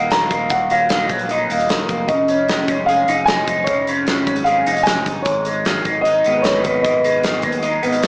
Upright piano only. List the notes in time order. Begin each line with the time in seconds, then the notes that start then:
Already playing: F#5
0.12 A#5
0.51 F#5
0.72 F5
2.08 D#5
2.86 F5
3.26 G#5
3.64 C#5
4.44 F5
4.83 G#5
5.22 C#5
6.01 D#5
6.42 C#5
6.82 D#5